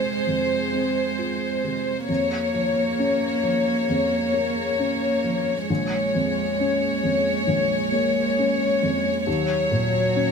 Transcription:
Already playing: F2 C3 G#3 C4 F4 G#4 C5
0.27 F2
0.73 C4
1.18 F4
1.64 C3
2.09 F2 A#3 G#4 C#5
2.54 F3
2.98 C#4
3.43 F3
3.89 F2
4.34 A#3
4.79 C#4
5.24 F3
5.69 A#1 G#3 A#3 G#4 C#5
6.15 F2
6.60 C#4
7.03 F2
7.47 A#1
7.92 A#3
8.38 C#4
8.83 F2
9.27 D#2 F#3 A#3 F#4 C#5
9.71 A#2
10.15 C#4

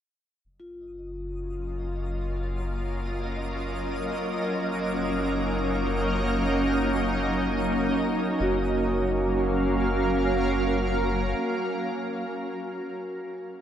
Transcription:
0.45 F#1 F#3 D#5
0.60 F4
0.68 F4
0.81 A#3 C#4
0.95 A#4
4.43 F#1
4.71 D#4
8.40 F#1 F#3 F#4
8.56 A#3
8.71 C#4
8.86 F5
9.02 A#4

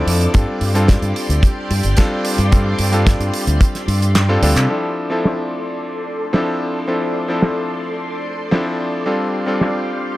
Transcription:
Already playing: F3 C4 D4 E4 A4 D5 D6
0.07 F2, open hi-hat
0.21 closed hi-hat
0.33 G2 G3 C4 D4 F4 G4 A4 D5 C6, kick, closed hi-hat
0.61 G2, open hi-hat
0.74 G3 C4 D4 F4 A4, closed hi-hat
0.88 kick, snare, closed hi-hat
1.02 G2, closed hi-hat
1.16 open hi-hat
1.29 D2, closed hi-hat
1.43 kick, closed hi-hat
1.71 G2, open hi-hat
1.83 G1, closed hi-hat
1.97 G3 C4 D4 F4 A4, kick, snare, closed hi-hat
2.25 open hi-hat
2.38 G2, closed hi-hat
2.51 G3 C4 D4 F4 A4, kick, closed hi-hat
2.79 G2, open hi-hat
2.92 G3 C4 D4 F4 A4, closed hi-hat
3.07 kick, snare, closed hi-hat
3.20 G2, closed hi-hat
3.34 open hi-hat
3.47 D2, closed hi-hat
3.61 kick, closed hi-hat
3.75 snare, closed hi-hat
3.88 G2, open hi-hat
4.02 closed hi-hat
4.15 snare, clap, closed hi-hat
4.29 G3 C4 D4 F4 A4
4.42 D2 G3 C4 D4 F4 A4, open hi-hat
4.56 C3, clap, closed hi-hat
4.69 F3 C4 D4 E4 A4 D5 C6
5.10 F3 C4 D4 E4 A4
5.25 snare
6.33 F3 C4 D4 E4 A4, snare
6.87 F3 C4 D4 E4 A4
7.28 F3 C4 D4 E4 A4
7.42 snare
8.51 F3 C4 D4 E4 A4, snare
9.06 G3 C4 D4 F4 G4 A4 F5
9.46 G3 C4 D4 F4 A4
9.61 snare

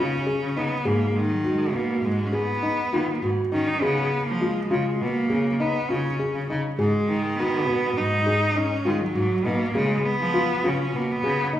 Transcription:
Already playing: C#3 F4
0.00 C#4
0.27 G#4
0.42 C#3
0.56 C#3 B3 D#4
0.85 G#2 A#3 G#4
1.16 D#3 G#3
1.30 F#3
1.44 G#3 F#4
1.73 B2 A#3 F#4
2.04 G#2 G#3
2.26 C#4
2.33 B3 G#4
2.63 D#4
2.93 D#3 F4
3.22 G#2 F#4
3.52 D#3 C#4 D#4
3.67 D#4
3.82 C#3 B3 G#4
4.25 F3 A#3
4.40 G#3 F4
4.70 C#3 F4
5.01 B2 A#3
5.30 C#3 G#4
5.60 B3 D#4
5.88 C#3 C#4 F4
6.20 G#4
6.34 C#3
6.49 C#3 D#4
6.79 G#2 G#3 G#4
7.08 D#3
7.39 B3 F#4
7.66 B2 F#4
7.95 G#2 D#4
8.26 G#4
8.56 C#4 D#4
8.85 D#3 G#3 F4
9.00 F#3
9.14 G#2 F#4
9.44 B2 A#3 D#4
9.74 C#3 G#3 G#4
10.05 B3
10.20 F3
10.34 F4
10.64 C#3 C#4 F4
10.93 B2 A#3
11.11 B3
11.23 C#3 G#4
11.53 A#3 D#4

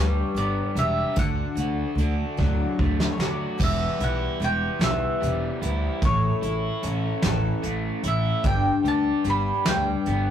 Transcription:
Already playing: D2 G2 D4 G4 C#5
0.00 G2 D3 G3 B3 D4
0.35 G1 B3 D5, closed hi-hat
0.75 E1 B3 D4 G4 E5, closed hi-hat
0.80 G3
1.16 D2 D3 F#3 A3 D4 F#4 F#5, kick, closed hi-hat
1.55 D2, closed hi-hat
1.60 F#4
1.95 D2 F#3 A3, closed hi-hat
1.99 D4 F#4
2.37 D2 D3 F#3 A3 D4 F#4, kick
2.79 D2 A3, kick
3.00 snare
3.13 C#5
3.18 D3 A3 D4 F#4, snare
3.23 D5
3.58 E1 E2 B2 E3 G3 B3 G4, kick, crash
3.63 E5
4.00 B1 E4, closed hi-hat
4.04 F#5
4.40 E1 E3 G3 B3 G4, closed hi-hat
4.44 G5
4.79 B1 E2 B2 E3 G3 B3 G4, snare, closed hi-hat
4.83 E5
5.20 E1 G3, closed hi-hat
5.62 D2 E3 G3 B3 E4 G4, closed hi-hat
6.02 A1 A2 E3 A3 C#4 A4 C#5, kick, closed hi-hat
6.42 A1 E4, closed hi-hat
6.83 A1 E3 A3 C#4 A4, closed hi-hat
7.22 A1 A2 E3 A3 C#4 A4, snare, closed hi-hat
7.63 A1 A3, closed hi-hat
8.03 A1 A3 C#4 E4 A4, closed hi-hat
8.08 E5
8.43 G1 G2 D3 G3 B3 D4 G4 G5, kick, closed hi-hat
8.83 D2 G4, closed hi-hat
8.88 A5
9.24 G1 G3 B3 D4 G4, closed hi-hat
9.30 B5
9.66 D2 G2 D3 G3 B3 D4 G4 G5, snare, closed hi-hat
10.06 G1 B3, closed hi-hat

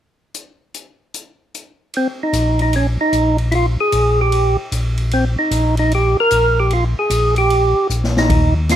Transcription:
0.34 closed hi-hat
0.74 closed hi-hat
1.14 closed hi-hat
1.54 closed hi-hat
1.94 C4, ride
2.23 D#4
2.33 A#1, hi-hat pedal, ride
2.59 D#4, ride
2.73 C#4, ride
3.01 D#4
3.13 A#1, hi-hat pedal, ride
3.38 ride
3.52 E4 F4, ride
3.81 G#4
3.92 A#1, hi-hat pedal, ride
4.21 G4
4.32 ride
4.72 A#1, hi-hat pedal, ride
4.98 ride
5.11 C4, ride
5.39 D#4
5.51 A#1, hi-hat pedal, ride
5.77 D#4, ride
5.91 G4, ride
6.20 A#4
6.31 A#1, hi-hat pedal, ride
6.60 G4
6.70 F4, ride
6.99 G#4
7.10 A#1, hi-hat pedal, ride
7.36 G4, ride
7.50 ride
7.90 A#1, hi-hat pedal
8.04 snare
8.17 D#4, snare
8.29 D#2, kick, ride
8.69 F4, snare, hi-hat pedal, ride

